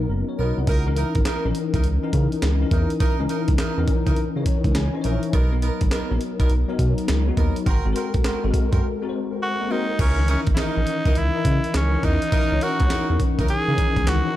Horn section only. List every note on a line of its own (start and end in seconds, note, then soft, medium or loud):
0.39 0.58 B3 medium
0.39 0.58 D#4 medium
0.39 0.58 A#4 medium
0.67 0.87 D#4 medium
0.67 0.87 E4 medium
0.67 0.88 A#4 loud
0.97 1.16 D#4 medium
0.97 1.17 E4 medium
0.97 1.17 A#4 medium
1.26 1.46 D#4 medium
1.26 1.46 E4 medium
1.26 1.46 A#4 medium
1.74 1.86 D#4 medium
1.74 1.86 E4 medium
1.74 1.86 A#4 medium
2.71 2.91 D#4 medium
2.71 2.91 E4 medium
2.71 2.91 A#4 medium
3.00 3.20 D#4 medium
3.00 3.20 E4 medium
3.00 3.21 A#4 loud
3.29 3.49 D#4 medium
3.29 3.50 E4 medium
3.29 3.50 A#4 medium
3.59 3.79 D#4 medium
3.59 3.79 E4 medium
3.59 3.79 A#4 medium
4.06 4.19 D#4 medium
4.06 4.19 E4 medium
4.06 4.19 A#4 medium
5.04 5.24 D#4 medium
5.04 5.24 E4 medium
5.04 5.24 A#4 medium
5.33 5.53 B3 loud
5.33 5.53 D#4 medium
5.33 5.53 A#4 loud
5.62 5.82 B3 medium
5.62 5.83 D#4 medium
5.62 5.83 A#4 medium
5.91 6.11 B3 medium
5.91 6.12 D#4 medium
5.91 6.12 A#4 medium
6.39 6.52 B3 medium
6.39 6.52 D#4 medium
6.39 6.52 A#4 medium
7.37 7.57 B3 medium
7.37 7.57 D#4 medium
7.37 7.57 A#4 medium
7.66 7.86 C4 loud
7.66 7.86 F#4 medium
7.66 7.86 A#4 loud
7.95 8.15 C4 medium
7.95 8.15 F#4 medium
7.95 8.15 A#4 medium
8.24 8.44 C4 medium
8.24 8.45 F#4 medium
8.24 8.45 A#4 medium
8.72 8.85 C4 medium
8.72 8.85 F#4 medium
8.72 8.85 A#4 medium
9.70 9.90 C4 medium
9.70 9.90 F#4 medium
9.70 9.90 A#4 medium
9.99 10.19 D#4 medium
9.99 10.19 E4 medium
9.99 10.19 A#4 loud
10.28 10.48 D#4 medium
10.28 10.48 E4 medium
10.28 10.49 A#4 medium
10.57 10.77 D#4 medium
10.57 10.78 E4 medium
10.57 10.78 A#4 medium
11.05 11.18 D#4 medium
11.05 11.18 E4 medium
11.05 11.18 A#4 medium
12.03 12.23 D#4 medium
12.03 12.23 E4 medium
12.03 12.23 A#4 medium
12.32 12.52 D#4 medium
12.32 12.52 E4 medium
12.32 12.52 A#4 loud
12.61 12.81 D#4 medium
12.61 12.82 E4 medium
12.61 12.82 A#4 medium
12.91 13.11 D#4 medium
12.91 13.11 E4 medium
12.91 13.11 A#4 medium
13.38 13.51 D#4 medium
13.38 13.51 E4 medium
13.38 13.51 A#4 medium